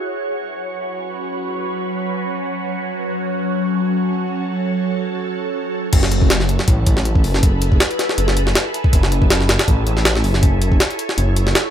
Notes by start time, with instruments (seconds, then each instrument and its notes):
Already playing: ambient pad F#3 C#4 F#4 B4 C#5
2.93 ambient pad A4
5.93 detuned saw bass F#1, ambient pad E4 G#4 A4 B4, kick, closed hi-hat, crash
6.03 snare
6.12 closed hi-hat
6.22 kick
6.30 snare, closed hi-hat
6.40 snare
6.49 closed hi-hat
6.59 snare
6.68 detuned saw bass A1, kick, closed hi-hat
6.87 detuned saw bass A1, kick, closed hi-hat
6.97 snare
7.05 closed hi-hat
7.15 kick
7.24 detuned saw bass F#1, open hi-hat
7.34 snare
7.43 kick, closed hi-hat
7.62 closed hi-hat
7.72 kick
7.80 snare, closed hi-hat
7.91 closed hi-hat
7.99 snare, closed hi-hat
8.09 snare
8.18 detuned saw bass F#1, closed hi-hat
8.28 snare
8.37 closed hi-hat
8.47 snare
8.55 snare, closed hi-hat
8.74 closed hi-hat
8.84 kick
8.93 detuned saw bass F#1, ambient pad C#5, kick, closed hi-hat
9.03 snare
9.12 closed hi-hat
9.22 kick
9.30 snare, closed hi-hat
9.41 snare
9.49 snare, closed hi-hat
9.59 snare, closed hi-hat
9.68 detuned saw bass A1, kick, closed hi-hat
9.87 detuned saw bass A1, closed hi-hat
9.97 snare
10.05 snare, closed hi-hat
10.15 snare
10.24 detuned saw bass F#1, open hi-hat
10.34 snare
10.43 kick, closed hi-hat
10.62 closed hi-hat
10.72 kick
10.80 snare, closed hi-hat
10.90 closed hi-hat
10.99 closed hi-hat
11.09 snare
11.18 detuned saw bass F#1, closed hi-hat
11.36 closed hi-hat
11.47 snare
11.55 snare, closed hi-hat